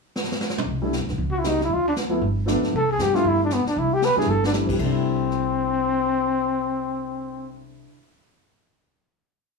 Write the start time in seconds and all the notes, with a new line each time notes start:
0.16 snare
0.24 snare
0.32 snare
0.41 snare
0.50 snare
0.58 mid tom
0.66 C2, brush sweep, kick
0.82 G3 A3 D4 E4
0.93 snare, hi-hat pedal
1.00 D2
1.08 B1, snare
1.18 C#2, brush sweep, kick
1.31 F#4
1.39 E4
1.44 G3 A#3 D#4 F#4, snare, hi-hat pedal
1.61 E4, snare
1.70 D2 F4, brush sweep, kick
1.88 D4
1.96 snare, hi-hat pedal
2.09 F3 A3 B3 E4
2.21 G1, brush sweep, kick
2.45 F3 A3 B3 D4, snare, hi-hat pedal
2.62 muted upright bass stroke, snare
2.73 C2 A4, brush sweep, kick
2.91 G#4
2.99 G2 G4, snare, hi-hat pedal
3.13 G3 A3 D4 E4 F4, snare
3.24 G1 E4, brush sweep, kick
3.44 D4
3.50 B3, snare, hi-hat pedal
3.65 D4, muted upright bass stroke, snare
3.76 C2 E4, brush sweep, kick
3.93 G4
4.02 B4, snare, hi-hat pedal
4.12 snare
4.16 G3 A3 D4 E4 G#4, muted upright bass stroke
4.20 snare
4.26 G1 A4
4.44 D4, snare
4.53 G3 A3 D4 E4, snare, hi-hat pedal
4.67 C3, kick, crash
4.73 G3
4.79 C2 A3, kick, crash
4.83 C4 D4
4.92 E4
5.31 cross-stick